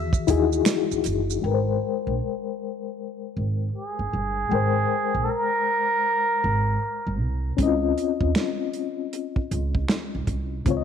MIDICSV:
0, 0, Header, 1, 5, 480
1, 0, Start_track
1, 0, Key_signature, -4, "major"
1, 0, Tempo, 769231
1, 891, Time_signature, 4, 2, 24, 8
1, 6765, End_track
2, 0, Start_track
2, 0, Title_t, "Muted trumpet"
2, 0, Program_c, 0, 59
2, 0, Note_on_c, 0, 76, 95
2, 63, Note_off_c, 0, 76, 0
2, 2343, Note_on_c, 0, 68, 79
2, 3272, Note_on_c, 0, 69, 61
2, 3282, Note_off_c, 0, 68, 0
2, 3304, Note_on_c, 0, 70, 97
2, 3313, Note_off_c, 0, 69, 0
2, 4497, Note_off_c, 0, 70, 0
2, 6765, End_track
3, 0, Start_track
3, 0, Title_t, "Reed electric piano"
3, 0, Program_c, 1, 4
3, 0, Control_c, 1, 64, 127
3, 0, Note_on_c, 1, 51, 65
3, 0, Note_on_c, 1, 52, 79
3, 0, Note_on_c, 1, 66, 67
3, 0, Note_on_c, 1, 68, 85
3, 170, Note_on_c, 1, 64, 80
3, 175, Note_on_c, 1, 63, 77
3, 183, Note_off_c, 1, 66, 0
3, 183, Note_on_c, 1, 66, 67
3, 190, Note_off_c, 1, 68, 0
3, 190, Note_on_c, 1, 68, 87
3, 860, Note_off_c, 1, 64, 0
3, 863, Note_off_c, 1, 63, 0
3, 866, Note_off_c, 1, 66, 0
3, 870, Note_off_c, 1, 68, 0
3, 883, Note_on_c, 1, 56, 60
3, 895, Note_on_c, 1, 79, 54
3, 899, Control_c, 1, 64, 0
3, 901, Note_off_c, 1, 52, 0
3, 904, Note_off_c, 1, 51, 0
3, 909, Note_on_c, 1, 70, 60
3, 920, Note_on_c, 1, 71, 53
3, 957, Note_off_c, 1, 71, 0
3, 961, Note_on_c, 1, 72, 70
3, 992, Control_c, 1, 64, 127
3, 2782, Note_off_c, 1, 56, 0
3, 2788, Note_off_c, 1, 79, 0
3, 2795, Note_off_c, 1, 70, 0
3, 2802, Note_on_c, 1, 56, 58
3, 2815, Note_on_c, 1, 79, 52
3, 2821, Note_off_c, 1, 72, 0
3, 2827, Note_on_c, 1, 70, 47
3, 2839, Note_on_c, 1, 72, 59
3, 4702, Note_off_c, 1, 56, 0
3, 4708, Note_off_c, 1, 79, 0
3, 4714, Note_off_c, 1, 70, 0
3, 4720, Note_off_c, 1, 72, 0
3, 4722, Note_on_c, 1, 61, 68
3, 4735, Note_on_c, 1, 60, 58
3, 4740, Control_c, 1, 64, 0
3, 4748, Note_on_c, 1, 64, 49
3, 4759, Note_on_c, 1, 75, 71
3, 4788, Note_on_c, 1, 65, 63
3, 4791, Note_off_c, 1, 64, 0
3, 4837, Control_c, 1, 64, 127
3, 6622, Note_off_c, 1, 61, 0
3, 6628, Note_off_c, 1, 60, 0
3, 6640, Note_off_c, 1, 75, 0
3, 6643, Note_on_c, 1, 49, 66
3, 6654, Note_on_c, 1, 60, 61
3, 6655, Note_off_c, 1, 65, 0
3, 6667, Note_on_c, 1, 65, 55
3, 6680, Note_on_c, 1, 73, 54
3, 6717, Note_off_c, 1, 73, 0
3, 6719, Note_on_c, 1, 75, 72
3, 6765, Note_off_c, 1, 49, 0
3, 6765, Note_off_c, 1, 60, 0
3, 6765, Note_off_c, 1, 65, 0
3, 6765, Note_off_c, 1, 75, 0
3, 6765, End_track
4, 0, Start_track
4, 0, Title_t, "Upright bass"
4, 0, Program_c, 2, 32
4, 0, Note_on_c, 2, 40, 88
4, 88, Note_off_c, 2, 40, 0
4, 181, Note_on_c, 2, 39, 82
4, 373, Note_off_c, 2, 39, 0
4, 570, Note_on_c, 2, 37, 72
4, 639, Note_off_c, 2, 37, 0
4, 660, Note_on_c, 2, 30, 78
4, 853, Note_off_c, 2, 30, 0
4, 898, Note_on_c, 2, 32, 81
4, 1092, Note_off_c, 2, 32, 0
4, 1291, Note_on_c, 2, 34, 76
4, 1360, Note_off_c, 2, 34, 0
4, 2101, Note_on_c, 2, 32, 70
4, 2293, Note_off_c, 2, 32, 0
4, 2491, Note_on_c, 2, 31, 57
4, 2560, Note_off_c, 2, 31, 0
4, 2579, Note_on_c, 2, 31, 68
4, 2773, Note_off_c, 2, 31, 0
4, 2816, Note_on_c, 2, 32, 80
4, 3011, Note_off_c, 2, 32, 0
4, 3211, Note_on_c, 2, 34, 69
4, 3280, Note_off_c, 2, 34, 0
4, 4019, Note_on_c, 2, 32, 75
4, 4213, Note_off_c, 2, 32, 0
4, 4409, Note_on_c, 2, 31, 70
4, 4497, Note_off_c, 2, 31, 0
4, 4497, Note_on_c, 2, 36, 67
4, 4692, Note_off_c, 2, 36, 0
4, 4735, Note_on_c, 2, 37, 83
4, 4930, Note_off_c, 2, 37, 0
4, 5124, Note_on_c, 2, 39, 72
4, 5196, Note_off_c, 2, 39, 0
4, 5936, Note_on_c, 2, 37, 85
4, 6131, Note_off_c, 2, 37, 0
4, 6332, Note_on_c, 2, 36, 71
4, 6400, Note_off_c, 2, 36, 0
4, 6413, Note_on_c, 2, 36, 65
4, 6609, Note_off_c, 2, 36, 0
4, 6653, Note_on_c, 2, 37, 91
4, 6765, Note_off_c, 2, 37, 0
4, 6765, End_track
5, 0, Start_track
5, 0, Title_t, "Drums"
5, 79, Note_on_c, 9, 36, 87
5, 84, Note_on_c, 9, 82, 50
5, 142, Note_off_c, 9, 36, 0
5, 146, Note_off_c, 9, 82, 0
5, 173, Note_on_c, 9, 82, 44
5, 175, Note_on_c, 9, 42, 61
5, 176, Note_on_c, 9, 36, 79
5, 235, Note_off_c, 9, 82, 0
5, 237, Note_off_c, 9, 42, 0
5, 238, Note_off_c, 9, 36, 0
5, 326, Note_on_c, 9, 82, 49
5, 389, Note_off_c, 9, 82, 0
5, 407, Note_on_c, 9, 26, 83
5, 412, Note_on_c, 9, 38, 98
5, 413, Note_off_c, 9, 26, 0
5, 413, Note_on_c, 9, 26, 66
5, 413, Note_on_c, 9, 42, 86
5, 413, Note_on_c, 9, 82, 69
5, 474, Note_off_c, 9, 38, 0
5, 475, Note_off_c, 9, 26, 0
5, 475, Note_off_c, 9, 82, 0
5, 476, Note_off_c, 9, 42, 0
5, 570, Note_on_c, 9, 82, 47
5, 632, Note_off_c, 9, 82, 0
5, 648, Note_on_c, 9, 42, 72
5, 659, Note_on_c, 9, 82, 38
5, 710, Note_off_c, 9, 42, 0
5, 722, Note_off_c, 9, 82, 0
5, 812, Note_on_c, 9, 82, 53
5, 875, Note_off_c, 9, 82, 0
5, 4732, Note_on_c, 9, 36, 86
5, 4732, Note_on_c, 9, 42, 68
5, 4795, Note_off_c, 9, 36, 0
5, 4795, Note_off_c, 9, 42, 0
5, 4978, Note_on_c, 9, 42, 49
5, 5040, Note_off_c, 9, 42, 0
5, 5121, Note_on_c, 9, 36, 77
5, 5183, Note_off_c, 9, 36, 0
5, 5210, Note_on_c, 9, 26, 71
5, 5210, Note_on_c, 9, 42, 62
5, 5216, Note_on_c, 9, 38, 87
5, 5272, Note_off_c, 9, 42, 0
5, 5273, Note_off_c, 9, 26, 0
5, 5278, Note_off_c, 9, 38, 0
5, 5450, Note_on_c, 9, 42, 44
5, 5513, Note_off_c, 9, 42, 0
5, 5696, Note_on_c, 9, 42, 61
5, 5759, Note_off_c, 9, 42, 0
5, 5841, Note_on_c, 9, 36, 74
5, 5904, Note_off_c, 9, 36, 0
5, 5937, Note_on_c, 9, 42, 52
5, 5999, Note_off_c, 9, 42, 0
5, 6082, Note_on_c, 9, 36, 72
5, 6144, Note_off_c, 9, 36, 0
5, 6168, Note_on_c, 9, 26, 67
5, 6173, Note_on_c, 9, 38, 88
5, 6175, Note_on_c, 9, 42, 68
5, 6231, Note_off_c, 9, 26, 0
5, 6236, Note_off_c, 9, 38, 0
5, 6237, Note_off_c, 9, 42, 0
5, 6410, Note_on_c, 9, 36, 72
5, 6410, Note_on_c, 9, 42, 59
5, 6472, Note_off_c, 9, 36, 0
5, 6473, Note_off_c, 9, 42, 0
5, 6651, Note_on_c, 9, 36, 92
5, 6651, Note_on_c, 9, 42, 66
5, 6713, Note_off_c, 9, 42, 0
5, 6714, Note_off_c, 9, 36, 0
5, 6765, End_track
0, 0, End_of_file